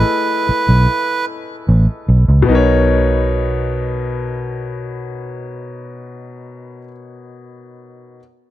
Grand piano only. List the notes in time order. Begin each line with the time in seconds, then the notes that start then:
Already playing: A3 E4 G#4 B4 D#5
2.42 B2 B3
2.48 D#4 A#4
2.55 C#5